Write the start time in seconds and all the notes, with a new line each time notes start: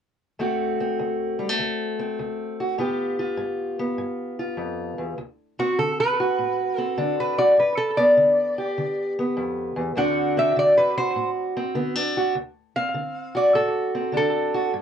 0.39 D2 A3 C4 F#4
0.80 C4
0.99 D2
1.39 G3
1.49 A3
1.59 D2
1.99 C4
2.19 D2
2.60 F#4
2.78 G2 B3 F4 G4
3.19 F4
3.38 G2
3.80 B3
3.98 G2
4.39 F4
4.57 F2
4.98 E2
5.18 D2
5.59 C4 F#4
5.78 D3 A4
6.00 B4
6.20 F#4
6.38 A2
6.78 C4 A4
6.98 D3 D4
7.20 B4
7.38 F#4 D5
7.57 G2 B4
7.78 A4
7.97 B3 D5
8.17 D3
8.58 G4
8.78 D3
9.19 B3
9.37 F2
9.76 E2
9.96 D2 D3 C4 D4 F#4 F#5
10.37 C4 E5
10.56 D3 D5
10.77 B4
10.97 F#4 C5
11.16 A2
11.56 C4
11.75 D3 B3
11.95 D4
12.17 F#4
12.35 D2
12.76 C4 F5
12.94 D3
13.35 F#4 D5
13.54 A2 A4
13.95 C4
14.12 D3 D4
14.17 A4
14.55 F#4
14.74 G2